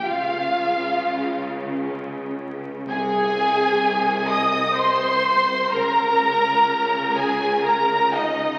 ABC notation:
X:1
M:3/4
L:1/8
Q:1/4=63
K:Ab
V:1 name="Violin section"
f4 z2 | a3 e' c'2 | b3 a b e |]
V:2 name="Viola section"
F4 z2 | A3 e c2 | B3 A B E |]
V:3 name="Violin section"
F4 z2 | A3 e c2 | B3 A B E |]
V:4 name="Cello section" clef=bass
D,6 | C,6 | D,6 |]
V:5 name="Double bass section" clef=bass
D,,6 | C,,6 | D,,6 |]